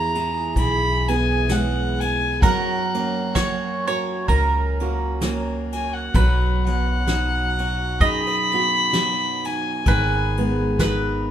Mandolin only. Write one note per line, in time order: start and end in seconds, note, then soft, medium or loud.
0.00 2.38 B4 medium
2.43 3.35 A#4 loud
3.35 3.86 C#5 loud
3.88 4.26 C#5 medium
4.28 5.69 A#4 medium
6.15 8.00 B4 medium
8.01 9.87 D#5 loud
9.88 10.79 B4 medium
10.80 11.31 B4 medium